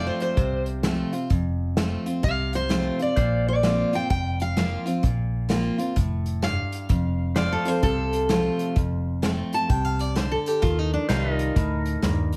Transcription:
0.00 0.33 F2 medium
0.00 0.35 F3 medium
0.00 0.35 A3 medium
0.00 0.36 C4 medium
0.00 0.36 F4 medium
0.00 3.13 C5 medium
0.00 3.13 F5 medium
0.07 0.21 C5 medium
0.20 0.67 C5 medium
0.20 closed hi-hat medium
0.37 1.02 C2 medium
0.37 1.27 C3 medium
0.37 kick loud
0.37 closed hi-hat medium
0.66 closed hi-hat medium
0.83 1.12 F3 medium
0.83 1.12 A3 medium
0.83 1.12 C4 medium
0.83 1.11 F4 medium
0.83 snare loud
0.83 closed hi-hat medium
1.13 1.30 C4 soft
1.13 1.29 F4 medium
1.13 closed hi-hat medium
1.30 1.96 F1 medium
1.30 2.20 F2 medium
1.30 kick loud
1.30 closed hi-hat medium
1.77 2.05 F3 medium
1.77 2.05 A3 medium
1.77 2.06 C4 medium
1.77 2.05 F4 medium
1.77 snare loud
1.77 closed hi-hat medium
2.06 2.23 C4 soft
2.06 2.23 F4 medium
2.06 closed hi-hat medium
2.23 2.89 C2 medium
2.23 3.13 C3 medium
2.23 2.54 F5 medium
2.23 kick loud
2.23 closed hi-hat medium
2.53 3.00 C5 medium
2.53 closed hi-hat medium
2.69 2.98 F3 medium
2.69 2.98 A3 medium
2.69 2.99 C4 medium
2.69 2.98 F4 medium
2.69 snare loud
2.69 closed hi-hat medium
2.99 3.17 C4 soft
2.99 3.16 F4 medium
2.99 3.47 D5 medium
2.99 closed hi-hat medium
3.16 3.82 A#1 medium
3.16 4.07 A#2 medium
3.16 6.86 C5 medium
3.16 6.86 F5 medium
3.16 kick loud
3.16 closed hi-hat medium
3.48 3.93 D5 medium
3.63 3.92 F3 medium
3.63 3.92 A#3 medium
3.63 3.92 C4 medium
3.63 3.92 F4 medium
3.63 snare loud
3.63 closed hi-hat medium
3.93 4.10 C4 soft
3.93 4.09 F4 medium
3.93 4.09 G5 medium
3.93 closed hi-hat medium
4.10 4.76 F1 medium
4.10 5.00 F2 medium
4.10 4.40 G5 medium
4.10 kick loud
4.10 closed hi-hat medium
4.40 4.87 F5 loud
4.40 closed hi-hat medium
4.57 4.85 F3 medium
4.57 4.85 A#3 medium
4.57 4.85 C4 medium
4.57 4.84 F4 loud
4.57 snare loud
4.57 closed hi-hat medium
4.86 5.03 C4 soft
4.86 5.02 F4 medium
4.86 closed hi-hat medium
5.03 5.69 A#1 medium
5.03 5.93 A#2 medium
5.03 kick loud
5.03 closed hi-hat medium
5.49 5.78 F3 medium
5.49 5.78 A#3 medium
5.49 5.78 C4 medium
5.49 5.77 F4 medium
5.49 snare loud
5.49 closed hi-hat medium
5.78 5.96 C4 soft
5.78 5.95 F4 medium
5.78 closed hi-hat medium
5.96 6.62 F1 medium
5.96 6.41 A2 medium
5.96 kick loud
5.96 closed hi-hat medium
6.26 closed hi-hat medium
6.42 6.88 G2 medium
6.42 7.34 F5 medium
6.42 snare loud
6.42 closed hi-hat medium
6.72 closed hi-hat medium
6.89 7.55 F1 medium
6.89 7.80 F2 medium
6.89 kick loud
6.89 closed hi-hat medium
7.36 7.64 F3 medium
7.36 7.64 A3 medium
7.36 7.65 C4 medium
7.36 7.64 F4 medium
7.36 10.59 C5 medium
7.36 7.52 D5 medium
7.36 10.60 F5 medium
7.36 snare loud
7.36 closed hi-hat medium
7.52 7.68 A4 medium
7.65 7.83 C4 medium
7.65 7.82 F4 medium
7.65 7.83 C5 medium
7.65 closed hi-hat medium
7.83 8.48 C2 medium
7.83 8.73 C3 medium
7.83 8.28 A4 loud
7.83 kick loud
7.83 closed hi-hat medium
8.13 closed hi-hat medium
8.29 8.74 F3 medium
8.29 8.74 A3 medium
8.29 8.75 C4 medium
8.29 8.75 F4 medium
8.29 snare loud
8.29 closed hi-hat medium
8.59 closed hi-hat medium
8.76 9.42 F1 medium
8.76 9.66 F2 medium
8.76 kick loud
8.76 closed hi-hat medium
9.22 9.67 F3 medium
9.22 9.68 A3 medium
9.22 9.68 C4 medium
9.22 9.68 F4 medium
9.22 snare loud
9.22 closed hi-hat medium
9.53 9.70 A5 medium
9.53 closed hi-hat medium
9.69 10.35 C2 medium
9.69 10.14 C3 medium
9.69 9.85 G5 medium
9.69 kick loud
9.69 closed hi-hat medium
9.85 10.00 F5 medium
9.99 10.15 D5 medium
9.99 closed hi-hat medium
10.15 10.61 D3 medium
10.15 10.31 C5 medium
10.15 snare loud
10.15 closed hi-hat medium
10.32 10.48 A4 medium
10.46 10.62 G4 medium
10.46 closed hi-hat medium
10.62 10.95 D#2 loud
10.62 11.07 D#3 medium
10.62 10.79 F4 medium
10.62 kick loud
10.62 closed hi-hat medium
10.79 10.93 D#4 medium
10.93 11.09 D4 medium
11.09 11.49 C2 medium
11.09 11.54 D#3 medium
11.09 11.54 G3 medium
11.09 12.37 D#4 medium
11.09 11.54 D#4 medium
11.09 11.55 F4 medium
11.09 11.34 C5 medium
11.09 11.35 F5 medium
11.09 snare loud
11.09 closed hi-hat medium
11.34 12.37 A#4 medium
11.34 12.37 D#5 medium
11.39 closed hi-hat medium
11.56 11.96 D2 medium
11.56 12.01 A2 medium
11.56 kick loud
11.56 closed hi-hat medium
11.86 closed hi-hat medium
12.02 12.37 D#2 medium
12.02 12.37 G2 medium
12.02 snare loud
12.02 closed hi-hat medium
12.32 closed hi-hat medium

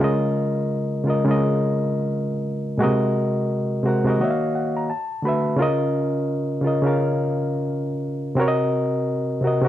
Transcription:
0.00 0.74 C#3 loud
0.00 0.75 G#3 loud
0.00 0.76 F4 loud
0.00 0.77 A#4 loud
0.04 0.77 D#5 loud
1.04 1.20 C#3 medium
1.04 1.21 G#3 medium
1.04 1.21 F4 medium
1.08 1.22 A#4 medium
1.08 1.23 D#5 medium
1.25 2.23 C#3 medium
1.25 2.24 G#3 medium
1.25 2.24 F4 medium
1.29 2.25 A#4 medium
1.29 2.26 D#5 loud
2.77 2.87 A#2 loud
2.77 3.54 G#3 loud
2.77 3.55 F#4 loud
2.82 3.57 C3 loud
2.82 3.56 A#4 loud
2.82 3.57 D#5 loud
3.82 3.99 C3 medium
3.82 3.99 G#3 medium
3.82 4.00 F#4 medium
3.82 4.18 C5 medium
3.87 4.01 A#4 medium
3.87 4.02 F#5 medium
4.04 4.19 C3 medium
4.04 4.20 G#3 medium
4.04 4.19 F#4 medium
4.08 4.21 A#4 medium
4.08 4.20 D#5 medium
4.18 4.78 D#3 medium
4.18 4.79 A#3 medium
4.18 4.79 F#4 medium
4.18 4.53 D#5 medium
4.22 4.80 C#5 medium
4.22 4.30 E5 medium
4.30 4.84 F5 medium
4.55 4.75 F#5 medium
4.77 4.89 A#5 medium
4.90 5.22 A5 medium
5.22 5.50 D3 medium
5.22 5.51 A3 medium
5.22 5.52 F#4 medium
5.22 5.58 B5 medium
5.27 5.53 B4 medium
5.27 5.53 E5 medium
5.56 6.33 C#3 loud
5.56 6.33 C#4 loud
5.56 6.34 F4 loud
5.61 6.35 A#4 loud
5.61 6.36 D#5 loud
6.62 6.78 C#3 medium
6.62 6.79 C#4 medium
6.62 6.79 F4 medium
6.66 6.80 A#4 medium
6.66 6.81 D#5 medium
6.82 7.81 C#3 medium
6.82 7.81 C#4 medium
6.82 7.82 F4 medium
6.87 7.83 A#4 medium
6.87 7.84 F5 medium
8.35 9.12 C3 loud
8.35 9.12 C4 loud
8.35 9.13 F#4 loud
8.40 9.14 A#4 loud
8.40 8.48 C#5 loud
8.48 9.18 D#5 loud
9.41 9.57 C3 medium
9.41 9.58 C4 medium
9.41 9.59 F#4 medium
9.45 9.59 A#4 medium
9.45 9.60 D#5 medium
9.62 9.68 C3 medium
9.62 9.68 C4 medium
9.62 9.68 F#4 medium

